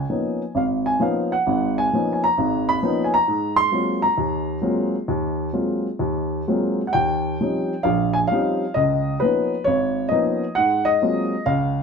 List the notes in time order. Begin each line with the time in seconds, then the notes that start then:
Already playing: G#5
0.10 F3 A#3 B3 C#4 D#4
0.55 G#1 F5
0.86 G#5
1.00 F3 A#3 B3 C#4 D#4 F5
1.32 F#5
1.47 G#1 G#2
1.78 G#5
1.93 F3 A#3 B3 C#4 D#4
2.13 G#5
2.24 A#5
2.38 G#1 G#2
2.69 B5
2.83 F3 A#3 B3 C#4 D#4
3.04 G#5
3.14 A#5
3.28 G#2
3.56 C6
3.72 F#3 G#3 A#3 C4 F4
4.02 A#5
4.18 D#2
4.62 F#3 G#3 A#3 C4 F4
5.08 D#2
5.53 F#3 G#3 A#3 C4 F4
5.99 D#2
6.48 F#3 G#3 A#3 C4 F4
6.87 F#5
6.93 D#2 G5
7.41 F3 G3 C4 C#4 D#4
7.83 A#1 F5
8.13 G#5
8.28 F5
8.32 F3 G3 C4 C#4 D#4
8.74 C#2 D#5
9.20 F3 A#3 B3 C#4 D#4 B4
9.64 G#1 C#5
10.09 F3 A#3 B3 C#4 D#5
10.13 D#4
10.55 G#2 F#5
10.85 D#5
11.02 F#3 G#3 A#3 C4 F4
11.46 C#2 F5